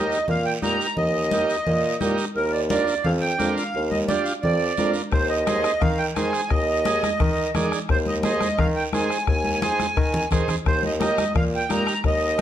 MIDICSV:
0, 0, Header, 1, 6, 480
1, 0, Start_track
1, 0, Key_signature, -3, "major"
1, 0, Tempo, 346021
1, 1351, Time_signature, 4, 2, 24, 8
1, 17218, End_track
2, 0, Start_track
2, 0, Title_t, "Accordion"
2, 0, Program_c, 0, 21
2, 0, Note_on_c, 0, 75, 85
2, 362, Note_off_c, 0, 75, 0
2, 406, Note_on_c, 0, 77, 85
2, 622, Note_off_c, 0, 77, 0
2, 623, Note_on_c, 0, 79, 83
2, 733, Note_off_c, 0, 79, 0
2, 875, Note_on_c, 0, 82, 94
2, 1320, Note_off_c, 0, 82, 0
2, 1342, Note_on_c, 0, 75, 87
2, 2732, Note_off_c, 0, 75, 0
2, 3268, Note_on_c, 0, 70, 85
2, 3493, Note_off_c, 0, 70, 0
2, 3503, Note_on_c, 0, 74, 78
2, 3613, Note_off_c, 0, 74, 0
2, 3747, Note_on_c, 0, 74, 84
2, 4217, Note_on_c, 0, 77, 87
2, 4244, Note_off_c, 0, 74, 0
2, 4328, Note_off_c, 0, 77, 0
2, 4448, Note_on_c, 0, 79, 90
2, 4906, Note_off_c, 0, 79, 0
2, 4938, Note_on_c, 0, 77, 84
2, 5391, Note_off_c, 0, 77, 0
2, 5424, Note_on_c, 0, 75, 88
2, 5534, Note_off_c, 0, 75, 0
2, 5658, Note_on_c, 0, 74, 88
2, 5888, Note_off_c, 0, 74, 0
2, 5891, Note_on_c, 0, 77, 83
2, 6004, Note_off_c, 0, 77, 0
2, 6136, Note_on_c, 0, 74, 89
2, 6813, Note_off_c, 0, 74, 0
2, 7104, Note_on_c, 0, 72, 90
2, 7339, Note_on_c, 0, 75, 90
2, 7355, Note_off_c, 0, 72, 0
2, 7543, Note_off_c, 0, 75, 0
2, 7564, Note_on_c, 0, 75, 90
2, 8043, Note_on_c, 0, 77, 95
2, 8073, Note_off_c, 0, 75, 0
2, 8296, Note_on_c, 0, 79, 89
2, 8305, Note_off_c, 0, 77, 0
2, 8407, Note_off_c, 0, 79, 0
2, 8528, Note_on_c, 0, 80, 89
2, 9015, Note_on_c, 0, 75, 91
2, 9034, Note_off_c, 0, 80, 0
2, 10407, Note_off_c, 0, 75, 0
2, 10962, Note_on_c, 0, 72, 87
2, 11067, Note_off_c, 0, 72, 0
2, 11190, Note_on_c, 0, 75, 86
2, 11298, Note_off_c, 0, 75, 0
2, 11430, Note_on_c, 0, 75, 85
2, 11911, Note_on_c, 0, 77, 95
2, 11924, Note_off_c, 0, 75, 0
2, 12019, Note_off_c, 0, 77, 0
2, 12149, Note_on_c, 0, 79, 91
2, 12257, Note_off_c, 0, 79, 0
2, 12405, Note_on_c, 0, 80, 93
2, 12844, Note_off_c, 0, 80, 0
2, 12876, Note_on_c, 0, 80, 97
2, 14257, Note_off_c, 0, 80, 0
2, 14801, Note_on_c, 0, 72, 80
2, 15019, Note_off_c, 0, 72, 0
2, 15056, Note_on_c, 0, 75, 78
2, 15158, Note_off_c, 0, 75, 0
2, 15278, Note_on_c, 0, 75, 87
2, 15720, Note_off_c, 0, 75, 0
2, 15762, Note_on_c, 0, 77, 90
2, 15867, Note_off_c, 0, 77, 0
2, 16025, Note_on_c, 0, 79, 91
2, 16231, Note_off_c, 0, 79, 0
2, 16263, Note_on_c, 0, 82, 93
2, 16694, Note_off_c, 0, 82, 0
2, 16738, Note_on_c, 0, 75, 93
2, 17218, Note_off_c, 0, 75, 0
2, 17218, End_track
3, 0, Start_track
3, 0, Title_t, "Transistor combo organ"
3, 0, Program_c, 1, 18
3, 0, Note_on_c, 1, 63, 68
3, 0, Note_on_c, 1, 67, 61
3, 0, Note_on_c, 1, 70, 76
3, 250, Note_off_c, 1, 63, 0
3, 252, Note_off_c, 1, 67, 0
3, 256, Note_off_c, 1, 70, 0
3, 862, Note_on_c, 1, 63, 68
3, 868, Note_on_c, 1, 67, 59
3, 875, Note_on_c, 1, 70, 73
3, 1203, Note_off_c, 1, 63, 0
3, 1205, Note_off_c, 1, 67, 0
3, 1209, Note_off_c, 1, 70, 0
3, 1839, Note_on_c, 1, 63, 70
3, 1846, Note_on_c, 1, 67, 62
3, 1850, Note_on_c, 1, 70, 72
3, 2171, Note_off_c, 1, 63, 0
3, 2175, Note_off_c, 1, 67, 0
3, 2177, Note_off_c, 1, 70, 0
3, 2782, Note_on_c, 1, 63, 83
3, 2785, Note_on_c, 1, 67, 74
3, 2788, Note_on_c, 1, 70, 89
3, 3123, Note_off_c, 1, 63, 0
3, 3124, Note_off_c, 1, 67, 0
3, 3126, Note_off_c, 1, 70, 0
3, 3748, Note_on_c, 1, 62, 72
3, 3750, Note_on_c, 1, 65, 64
3, 3754, Note_on_c, 1, 70, 75
3, 4086, Note_off_c, 1, 62, 0
3, 4087, Note_off_c, 1, 65, 0
3, 4089, Note_off_c, 1, 70, 0
3, 4696, Note_on_c, 1, 62, 69
3, 4703, Note_on_c, 1, 65, 63
3, 4705, Note_on_c, 1, 70, 78
3, 5040, Note_off_c, 1, 62, 0
3, 5044, Note_off_c, 1, 65, 0
3, 5044, Note_off_c, 1, 70, 0
3, 5672, Note_on_c, 1, 62, 67
3, 5682, Note_on_c, 1, 65, 63
3, 5685, Note_on_c, 1, 67, 74
3, 6008, Note_off_c, 1, 62, 0
3, 6013, Note_off_c, 1, 65, 0
3, 6014, Note_off_c, 1, 67, 0
3, 6623, Note_on_c, 1, 62, 65
3, 6629, Note_on_c, 1, 65, 63
3, 6633, Note_on_c, 1, 70, 75
3, 6964, Note_off_c, 1, 62, 0
3, 6966, Note_off_c, 1, 65, 0
3, 6969, Note_off_c, 1, 70, 0
3, 7586, Note_on_c, 1, 63, 66
3, 7597, Note_on_c, 1, 68, 61
3, 7601, Note_on_c, 1, 72, 76
3, 7925, Note_off_c, 1, 63, 0
3, 7930, Note_off_c, 1, 68, 0
3, 7933, Note_off_c, 1, 72, 0
3, 8558, Note_on_c, 1, 63, 68
3, 8562, Note_on_c, 1, 68, 66
3, 8571, Note_on_c, 1, 72, 76
3, 8891, Note_off_c, 1, 63, 0
3, 8893, Note_off_c, 1, 68, 0
3, 8897, Note_off_c, 1, 72, 0
3, 9509, Note_on_c, 1, 63, 69
3, 9520, Note_on_c, 1, 68, 59
3, 9526, Note_on_c, 1, 75, 75
3, 9846, Note_off_c, 1, 63, 0
3, 9851, Note_off_c, 1, 68, 0
3, 9855, Note_off_c, 1, 75, 0
3, 10472, Note_on_c, 1, 63, 78
3, 10475, Note_on_c, 1, 68, 77
3, 10480, Note_on_c, 1, 74, 90
3, 10807, Note_off_c, 1, 63, 0
3, 10809, Note_off_c, 1, 68, 0
3, 10811, Note_off_c, 1, 74, 0
3, 11433, Note_on_c, 1, 63, 64
3, 11441, Note_on_c, 1, 68, 66
3, 11441, Note_on_c, 1, 72, 76
3, 11768, Note_off_c, 1, 63, 0
3, 11772, Note_off_c, 1, 68, 0
3, 11772, Note_off_c, 1, 72, 0
3, 12401, Note_on_c, 1, 63, 73
3, 12407, Note_on_c, 1, 68, 64
3, 12408, Note_on_c, 1, 72, 74
3, 12732, Note_off_c, 1, 63, 0
3, 12734, Note_off_c, 1, 68, 0
3, 12735, Note_off_c, 1, 72, 0
3, 13349, Note_on_c, 1, 63, 68
3, 13354, Note_on_c, 1, 68, 64
3, 13360, Note_on_c, 1, 72, 76
3, 13685, Note_off_c, 1, 63, 0
3, 13688, Note_off_c, 1, 68, 0
3, 13691, Note_off_c, 1, 72, 0
3, 14309, Note_on_c, 1, 63, 81
3, 14313, Note_on_c, 1, 68, 71
3, 14319, Note_on_c, 1, 72, 87
3, 14645, Note_off_c, 1, 63, 0
3, 14647, Note_off_c, 1, 68, 0
3, 14650, Note_off_c, 1, 72, 0
3, 15257, Note_on_c, 1, 63, 70
3, 15261, Note_on_c, 1, 70, 79
3, 15263, Note_on_c, 1, 67, 61
3, 15599, Note_off_c, 1, 63, 0
3, 15601, Note_off_c, 1, 70, 0
3, 15602, Note_off_c, 1, 67, 0
3, 16221, Note_on_c, 1, 63, 64
3, 16228, Note_on_c, 1, 67, 61
3, 16233, Note_on_c, 1, 70, 75
3, 16561, Note_off_c, 1, 63, 0
3, 16565, Note_off_c, 1, 67, 0
3, 16567, Note_off_c, 1, 70, 0
3, 17218, End_track
4, 0, Start_track
4, 0, Title_t, "Bassoon"
4, 0, Program_c, 2, 70
4, 0, Note_on_c, 2, 39, 85
4, 199, Note_off_c, 2, 39, 0
4, 394, Note_on_c, 2, 46, 101
4, 777, Note_off_c, 2, 46, 0
4, 866, Note_on_c, 2, 46, 83
4, 1060, Note_off_c, 2, 46, 0
4, 1349, Note_on_c, 2, 39, 85
4, 2118, Note_off_c, 2, 39, 0
4, 2314, Note_on_c, 2, 46, 100
4, 2697, Note_off_c, 2, 46, 0
4, 2803, Note_on_c, 2, 46, 88
4, 2990, Note_off_c, 2, 46, 0
4, 3277, Note_on_c, 2, 39, 91
4, 4043, Note_off_c, 2, 39, 0
4, 4240, Note_on_c, 2, 41, 100
4, 4621, Note_off_c, 2, 41, 0
4, 4720, Note_on_c, 2, 41, 85
4, 4909, Note_off_c, 2, 41, 0
4, 5208, Note_on_c, 2, 39, 91
4, 5671, Note_off_c, 2, 39, 0
4, 6159, Note_on_c, 2, 41, 95
4, 6541, Note_off_c, 2, 41, 0
4, 6641, Note_on_c, 2, 41, 82
4, 6829, Note_off_c, 2, 41, 0
4, 7105, Note_on_c, 2, 39, 89
4, 7876, Note_off_c, 2, 39, 0
4, 8069, Note_on_c, 2, 51, 94
4, 8454, Note_off_c, 2, 51, 0
4, 8550, Note_on_c, 2, 51, 83
4, 8743, Note_off_c, 2, 51, 0
4, 9025, Note_on_c, 2, 39, 85
4, 9795, Note_off_c, 2, 39, 0
4, 9993, Note_on_c, 2, 51, 99
4, 10376, Note_off_c, 2, 51, 0
4, 10475, Note_on_c, 2, 51, 84
4, 10665, Note_off_c, 2, 51, 0
4, 10952, Note_on_c, 2, 39, 84
4, 11719, Note_off_c, 2, 39, 0
4, 11913, Note_on_c, 2, 51, 105
4, 12296, Note_off_c, 2, 51, 0
4, 12390, Note_on_c, 2, 51, 88
4, 12582, Note_off_c, 2, 51, 0
4, 12871, Note_on_c, 2, 39, 88
4, 13340, Note_off_c, 2, 39, 0
4, 13826, Note_on_c, 2, 51, 101
4, 14212, Note_off_c, 2, 51, 0
4, 14310, Note_on_c, 2, 51, 80
4, 14502, Note_off_c, 2, 51, 0
4, 14793, Note_on_c, 2, 39, 85
4, 15559, Note_off_c, 2, 39, 0
4, 15749, Note_on_c, 2, 46, 98
4, 16133, Note_off_c, 2, 46, 0
4, 16230, Note_on_c, 2, 46, 88
4, 16421, Note_off_c, 2, 46, 0
4, 16706, Note_on_c, 2, 39, 89
4, 17218, Note_off_c, 2, 39, 0
4, 17218, End_track
5, 0, Start_track
5, 0, Title_t, "Two-headed folk drums"
5, 7106, Note_on_c, 9, 36, 77
5, 7108, Note_on_c, 9, 37, 79
5, 7244, Note_off_c, 9, 36, 0
5, 7246, Note_off_c, 9, 37, 0
5, 7587, Note_on_c, 9, 37, 77
5, 7726, Note_off_c, 9, 37, 0
5, 7824, Note_on_c, 9, 37, 80
5, 7963, Note_off_c, 9, 37, 0
5, 8067, Note_on_c, 9, 36, 85
5, 8069, Note_on_c, 9, 37, 78
5, 8206, Note_off_c, 9, 36, 0
5, 8208, Note_off_c, 9, 37, 0
5, 8552, Note_on_c, 9, 37, 77
5, 8691, Note_off_c, 9, 37, 0
5, 8782, Note_on_c, 9, 37, 74
5, 8920, Note_off_c, 9, 37, 0
5, 9022, Note_on_c, 9, 37, 76
5, 9027, Note_on_c, 9, 36, 75
5, 9161, Note_off_c, 9, 37, 0
5, 9165, Note_off_c, 9, 36, 0
5, 9513, Note_on_c, 9, 37, 79
5, 9652, Note_off_c, 9, 37, 0
5, 9762, Note_on_c, 9, 37, 80
5, 9901, Note_off_c, 9, 37, 0
5, 9988, Note_on_c, 9, 37, 82
5, 9991, Note_on_c, 9, 36, 85
5, 10127, Note_off_c, 9, 37, 0
5, 10130, Note_off_c, 9, 36, 0
5, 10469, Note_on_c, 9, 37, 78
5, 10608, Note_off_c, 9, 37, 0
5, 10709, Note_on_c, 9, 37, 76
5, 10848, Note_off_c, 9, 37, 0
5, 10946, Note_on_c, 9, 37, 80
5, 10950, Note_on_c, 9, 36, 77
5, 11084, Note_off_c, 9, 37, 0
5, 11088, Note_off_c, 9, 36, 0
5, 11425, Note_on_c, 9, 37, 74
5, 11563, Note_off_c, 9, 37, 0
5, 11660, Note_on_c, 9, 37, 81
5, 11799, Note_off_c, 9, 37, 0
5, 11911, Note_on_c, 9, 36, 76
5, 11911, Note_on_c, 9, 37, 80
5, 12049, Note_off_c, 9, 36, 0
5, 12049, Note_off_c, 9, 37, 0
5, 12389, Note_on_c, 9, 37, 77
5, 12528, Note_off_c, 9, 37, 0
5, 12627, Note_on_c, 9, 37, 76
5, 12765, Note_off_c, 9, 37, 0
5, 12864, Note_on_c, 9, 36, 79
5, 12864, Note_on_c, 9, 37, 75
5, 13002, Note_off_c, 9, 36, 0
5, 13003, Note_off_c, 9, 37, 0
5, 13349, Note_on_c, 9, 37, 74
5, 13488, Note_off_c, 9, 37, 0
5, 13589, Note_on_c, 9, 37, 76
5, 13728, Note_off_c, 9, 37, 0
5, 13831, Note_on_c, 9, 36, 82
5, 13834, Note_on_c, 9, 37, 84
5, 13969, Note_off_c, 9, 36, 0
5, 13972, Note_off_c, 9, 37, 0
5, 14312, Note_on_c, 9, 36, 67
5, 14319, Note_on_c, 9, 37, 79
5, 14450, Note_off_c, 9, 36, 0
5, 14457, Note_off_c, 9, 37, 0
5, 14550, Note_on_c, 9, 37, 75
5, 14689, Note_off_c, 9, 37, 0
5, 14789, Note_on_c, 9, 36, 74
5, 14792, Note_on_c, 9, 37, 81
5, 14928, Note_off_c, 9, 36, 0
5, 14931, Note_off_c, 9, 37, 0
5, 15281, Note_on_c, 9, 37, 77
5, 15420, Note_off_c, 9, 37, 0
5, 15514, Note_on_c, 9, 37, 82
5, 15653, Note_off_c, 9, 37, 0
5, 15750, Note_on_c, 9, 36, 78
5, 15754, Note_on_c, 9, 37, 81
5, 15888, Note_off_c, 9, 36, 0
5, 15892, Note_off_c, 9, 37, 0
5, 16240, Note_on_c, 9, 37, 77
5, 16379, Note_off_c, 9, 37, 0
5, 16465, Note_on_c, 9, 37, 77
5, 16604, Note_off_c, 9, 37, 0
5, 16701, Note_on_c, 9, 37, 74
5, 16705, Note_on_c, 9, 36, 80
5, 16840, Note_off_c, 9, 37, 0
5, 16843, Note_off_c, 9, 36, 0
5, 17218, End_track
6, 0, Start_track
6, 0, Title_t, "Drums"
6, 168, Note_on_c, 9, 73, 63
6, 307, Note_off_c, 9, 73, 0
6, 387, Note_on_c, 9, 63, 33
6, 387, Note_on_c, 9, 64, 79
6, 401, Note_on_c, 9, 74, 67
6, 525, Note_off_c, 9, 63, 0
6, 525, Note_off_c, 9, 64, 0
6, 540, Note_off_c, 9, 74, 0
6, 864, Note_on_c, 9, 63, 78
6, 881, Note_on_c, 9, 73, 68
6, 1003, Note_off_c, 9, 63, 0
6, 1020, Note_off_c, 9, 73, 0
6, 1121, Note_on_c, 9, 73, 67
6, 1260, Note_off_c, 9, 73, 0
6, 1342, Note_on_c, 9, 63, 34
6, 1342, Note_on_c, 9, 64, 64
6, 1367, Note_on_c, 9, 74, 65
6, 1480, Note_off_c, 9, 63, 0
6, 1480, Note_off_c, 9, 64, 0
6, 1506, Note_off_c, 9, 74, 0
6, 1824, Note_on_c, 9, 63, 90
6, 1835, Note_on_c, 9, 73, 66
6, 1962, Note_off_c, 9, 63, 0
6, 1973, Note_off_c, 9, 73, 0
6, 2073, Note_on_c, 9, 73, 64
6, 2212, Note_off_c, 9, 73, 0
6, 2311, Note_on_c, 9, 63, 35
6, 2311, Note_on_c, 9, 64, 81
6, 2323, Note_on_c, 9, 74, 65
6, 2450, Note_off_c, 9, 63, 0
6, 2450, Note_off_c, 9, 64, 0
6, 2462, Note_off_c, 9, 74, 0
6, 2785, Note_on_c, 9, 63, 82
6, 2799, Note_on_c, 9, 73, 70
6, 2924, Note_off_c, 9, 63, 0
6, 2938, Note_off_c, 9, 73, 0
6, 3022, Note_on_c, 9, 73, 70
6, 3161, Note_off_c, 9, 73, 0
6, 3267, Note_on_c, 9, 63, 31
6, 3270, Note_on_c, 9, 74, 69
6, 3406, Note_off_c, 9, 63, 0
6, 3408, Note_off_c, 9, 74, 0
6, 3749, Note_on_c, 9, 63, 96
6, 3762, Note_on_c, 9, 73, 69
6, 3887, Note_off_c, 9, 63, 0
6, 3900, Note_off_c, 9, 73, 0
6, 3989, Note_on_c, 9, 73, 66
6, 4128, Note_off_c, 9, 73, 0
6, 4224, Note_on_c, 9, 63, 35
6, 4224, Note_on_c, 9, 64, 81
6, 4231, Note_on_c, 9, 74, 69
6, 4362, Note_off_c, 9, 63, 0
6, 4362, Note_off_c, 9, 64, 0
6, 4369, Note_off_c, 9, 74, 0
6, 4712, Note_on_c, 9, 63, 85
6, 4715, Note_on_c, 9, 73, 72
6, 4851, Note_off_c, 9, 63, 0
6, 4854, Note_off_c, 9, 73, 0
6, 4961, Note_on_c, 9, 73, 66
6, 5099, Note_off_c, 9, 73, 0
6, 5193, Note_on_c, 9, 63, 33
6, 5200, Note_on_c, 9, 74, 68
6, 5332, Note_off_c, 9, 63, 0
6, 5339, Note_off_c, 9, 74, 0
6, 5432, Note_on_c, 9, 63, 67
6, 5571, Note_off_c, 9, 63, 0
6, 5667, Note_on_c, 9, 63, 92
6, 5675, Note_on_c, 9, 73, 67
6, 5806, Note_off_c, 9, 63, 0
6, 5814, Note_off_c, 9, 73, 0
6, 5905, Note_on_c, 9, 73, 67
6, 6044, Note_off_c, 9, 73, 0
6, 6146, Note_on_c, 9, 74, 67
6, 6152, Note_on_c, 9, 63, 32
6, 6152, Note_on_c, 9, 64, 78
6, 6284, Note_off_c, 9, 74, 0
6, 6291, Note_off_c, 9, 63, 0
6, 6291, Note_off_c, 9, 64, 0
6, 6622, Note_on_c, 9, 73, 68
6, 6631, Note_on_c, 9, 63, 81
6, 6761, Note_off_c, 9, 73, 0
6, 6770, Note_off_c, 9, 63, 0
6, 6847, Note_on_c, 9, 73, 65
6, 6986, Note_off_c, 9, 73, 0
6, 7096, Note_on_c, 9, 74, 67
6, 7114, Note_on_c, 9, 63, 33
6, 7235, Note_off_c, 9, 74, 0
6, 7253, Note_off_c, 9, 63, 0
6, 7589, Note_on_c, 9, 73, 68
6, 7592, Note_on_c, 9, 63, 88
6, 7727, Note_off_c, 9, 73, 0
6, 7731, Note_off_c, 9, 63, 0
6, 7828, Note_on_c, 9, 73, 65
6, 7967, Note_off_c, 9, 73, 0
6, 8064, Note_on_c, 9, 74, 69
6, 8074, Note_on_c, 9, 63, 35
6, 8074, Note_on_c, 9, 64, 79
6, 8203, Note_off_c, 9, 74, 0
6, 8213, Note_off_c, 9, 63, 0
6, 8213, Note_off_c, 9, 64, 0
6, 8549, Note_on_c, 9, 73, 69
6, 8555, Note_on_c, 9, 63, 80
6, 8687, Note_off_c, 9, 73, 0
6, 8693, Note_off_c, 9, 63, 0
6, 8799, Note_on_c, 9, 73, 71
6, 8938, Note_off_c, 9, 73, 0
6, 9034, Note_on_c, 9, 63, 33
6, 9038, Note_on_c, 9, 74, 68
6, 9172, Note_off_c, 9, 63, 0
6, 9176, Note_off_c, 9, 74, 0
6, 9506, Note_on_c, 9, 63, 93
6, 9520, Note_on_c, 9, 73, 73
6, 9645, Note_off_c, 9, 63, 0
6, 9659, Note_off_c, 9, 73, 0
6, 9754, Note_on_c, 9, 63, 68
6, 9761, Note_on_c, 9, 73, 67
6, 9893, Note_off_c, 9, 63, 0
6, 9899, Note_off_c, 9, 73, 0
6, 9988, Note_on_c, 9, 74, 67
6, 9992, Note_on_c, 9, 63, 34
6, 9992, Note_on_c, 9, 64, 81
6, 10127, Note_off_c, 9, 74, 0
6, 10130, Note_off_c, 9, 63, 0
6, 10130, Note_off_c, 9, 64, 0
6, 10468, Note_on_c, 9, 63, 82
6, 10468, Note_on_c, 9, 64, 68
6, 10479, Note_on_c, 9, 73, 71
6, 10607, Note_off_c, 9, 63, 0
6, 10607, Note_off_c, 9, 64, 0
6, 10618, Note_off_c, 9, 73, 0
6, 10721, Note_on_c, 9, 73, 72
6, 10860, Note_off_c, 9, 73, 0
6, 10948, Note_on_c, 9, 63, 34
6, 10957, Note_on_c, 9, 74, 66
6, 11087, Note_off_c, 9, 63, 0
6, 11096, Note_off_c, 9, 74, 0
6, 11183, Note_on_c, 9, 63, 69
6, 11322, Note_off_c, 9, 63, 0
6, 11420, Note_on_c, 9, 63, 89
6, 11435, Note_on_c, 9, 73, 66
6, 11559, Note_off_c, 9, 63, 0
6, 11574, Note_off_c, 9, 73, 0
6, 11663, Note_on_c, 9, 63, 69
6, 11678, Note_on_c, 9, 73, 70
6, 11802, Note_off_c, 9, 63, 0
6, 11816, Note_off_c, 9, 73, 0
6, 11908, Note_on_c, 9, 63, 35
6, 11908, Note_on_c, 9, 64, 82
6, 11927, Note_on_c, 9, 74, 69
6, 12046, Note_off_c, 9, 63, 0
6, 12046, Note_off_c, 9, 64, 0
6, 12066, Note_off_c, 9, 74, 0
6, 12383, Note_on_c, 9, 63, 82
6, 12404, Note_on_c, 9, 73, 73
6, 12522, Note_off_c, 9, 63, 0
6, 12543, Note_off_c, 9, 73, 0
6, 12642, Note_on_c, 9, 73, 69
6, 12780, Note_off_c, 9, 73, 0
6, 12867, Note_on_c, 9, 63, 34
6, 12874, Note_on_c, 9, 74, 69
6, 13006, Note_off_c, 9, 63, 0
6, 13012, Note_off_c, 9, 74, 0
6, 13101, Note_on_c, 9, 63, 68
6, 13240, Note_off_c, 9, 63, 0
6, 13346, Note_on_c, 9, 63, 89
6, 13360, Note_on_c, 9, 73, 67
6, 13485, Note_off_c, 9, 63, 0
6, 13499, Note_off_c, 9, 73, 0
6, 13589, Note_on_c, 9, 63, 71
6, 13596, Note_on_c, 9, 73, 68
6, 13727, Note_off_c, 9, 63, 0
6, 13735, Note_off_c, 9, 73, 0
6, 13828, Note_on_c, 9, 74, 71
6, 13967, Note_off_c, 9, 74, 0
6, 14064, Note_on_c, 9, 64, 87
6, 14203, Note_off_c, 9, 64, 0
6, 14298, Note_on_c, 9, 64, 75
6, 14311, Note_on_c, 9, 73, 68
6, 14437, Note_off_c, 9, 64, 0
6, 14449, Note_off_c, 9, 73, 0
6, 14539, Note_on_c, 9, 64, 77
6, 14550, Note_on_c, 9, 73, 68
6, 14678, Note_off_c, 9, 64, 0
6, 14689, Note_off_c, 9, 73, 0
6, 14783, Note_on_c, 9, 63, 32
6, 14795, Note_on_c, 9, 74, 69
6, 14922, Note_off_c, 9, 63, 0
6, 14933, Note_off_c, 9, 74, 0
6, 15025, Note_on_c, 9, 63, 66
6, 15163, Note_off_c, 9, 63, 0
6, 15268, Note_on_c, 9, 63, 88
6, 15270, Note_on_c, 9, 73, 66
6, 15407, Note_off_c, 9, 63, 0
6, 15409, Note_off_c, 9, 73, 0
6, 15511, Note_on_c, 9, 63, 65
6, 15513, Note_on_c, 9, 73, 69
6, 15649, Note_off_c, 9, 63, 0
6, 15652, Note_off_c, 9, 73, 0
6, 15745, Note_on_c, 9, 74, 68
6, 15755, Note_on_c, 9, 63, 32
6, 15755, Note_on_c, 9, 64, 85
6, 15884, Note_off_c, 9, 74, 0
6, 15894, Note_off_c, 9, 63, 0
6, 15894, Note_off_c, 9, 64, 0
6, 16231, Note_on_c, 9, 73, 74
6, 16236, Note_on_c, 9, 63, 85
6, 16369, Note_off_c, 9, 73, 0
6, 16375, Note_off_c, 9, 63, 0
6, 16474, Note_on_c, 9, 73, 66
6, 16613, Note_off_c, 9, 73, 0
6, 16705, Note_on_c, 9, 74, 66
6, 16716, Note_on_c, 9, 63, 34
6, 16844, Note_off_c, 9, 74, 0
6, 16854, Note_off_c, 9, 63, 0
6, 17218, End_track
0, 0, End_of_file